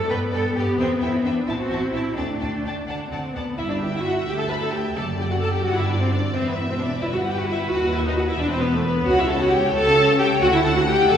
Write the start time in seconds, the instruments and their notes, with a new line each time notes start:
0.09 double bass section G2, viola section B3, violin section B4 D5 G5, cello section B4
0.32 double bass section G2, cello section A4, violin section B4 D5 G5
0.55 double bass section G2, cello section G4, violin section B4 D5 G5
0.78 double bass section E2, cello section C4, violin section B4 E5 G5
0.91 cello section B3
1.01 double bass section E2, cello section E4, violin section B4 E5 G5
1.13 cello section C4
1.23 double bass section E2, cello section D4, violin section B4 E5 G5
1.46 double bass section A1, viola section C4, cello section E4, violin section C5 E5 A5
1.59 cello section F#4
1.70 double bass section A1, violin section C5 E5 A5
1.93 double bass section A1, cello section E4, violin section C5 E5 A5
2.16 double bass section D2, viola section A3, cello section D4, violin section D5 G5 A5
2.40 double bass section D2, violin section D5 G5 A5
2.64 double bass section D2, violin section D5 G5 A5
2.87 double bass section D2, viola section D4, violin section D5 F#5 A5
3.10 double bass section D2, viola section C4, violin section D5 F#5 A5
3.34 double bass section D2, viola section B3, violin section D5 F#5 A5
3.57 double bass section G1, cello section G2, viola section E4, violin section E5
3.70 viola section D4, violin section D5
3.81 viola section G4, violin section G5
3.93 viola section E4, violin section E5
4.05 viola section F#4, violin section F#5
4.27 double bass section D2, cello section D2, viola section G4, violin section G5
4.38 viola section A4, violin section A5
4.49 viola section B4, violin section B5
4.61 viola section A4, violin section A5
4.71 viola section G4, violin section G5
4.95 double bass section F#1, cello section F#2, viola section A4, violin section D5 A5
5.18 viola section G4, violin section G5
5.30 viola section F#4, violin section F#5
5.41 viola section A4, violin section A5
5.52 viola section G4, violin section G5
5.63 double bass section G1, cello section G2, viola section F#4, violin section D5 F#5
5.75 viola section E4, violin section E5
5.87 viola section D4, violin section D5
5.99 viola section C4, violin section C5
6.10 viola section D4, violin section D5
6.33 double bass section E1, cello section E2, viola section C4, violin section C5 E5
6.46 viola section B3, violin section B4
6.55 viola section E4, violin section E5
6.69 viola section C4, violin section C5
6.78 viola section D4
6.82 violin section D5
7.01 double bass section G1, cello section G2, viola section E4, violin section B4 E5
7.14 viola section F#4, violin section F#5
7.26 viola section G4, violin section G5
7.37 viola section F#4, violin section F#5
7.48 viola section E4, violin section E5
7.71 double bass section D#2, cello section D#2, viola section F#4, violin section F#5
7.94 viola section E4, violin section E5
8.05 viola section D#4, violin section D#5
8.16 viola section F#4, violin section F#5
8.28 viola section E4, violin section E5
8.38 double bass section E1, cello section E2, viola section D4, violin section B4 D5
8.49 viola section C4, violin section C5
8.61 viola section B3, violin section B4
8.73 viola section A3, violin section A4
8.83 viola section B3, violin section B4
9.05 double bass section C#2, cello section C#2, viola section F#4, violin section C#5 F#5
9.17 viola section E4, violin section E5
9.28 viola section A4, violin section A5
9.41 viola section F#4, violin section F#5
9.52 viola section G4, violin section G5
9.73 double bass section C#2, cello section C#3, viola section A4, violin section A5
10.18 viola section G4, violin section G5
10.41 double bass section D2, cello section D2, viola section F#4, violin section F#5
10.52 viola section E4, violin section E5
10.63 viola section A4, violin section A5
10.75 viola section F#4, violin section F#5
10.87 viola section G4, violin section G5
11.09 double bass section F#1, cello section F#2, viola section A4, violin section D5 A5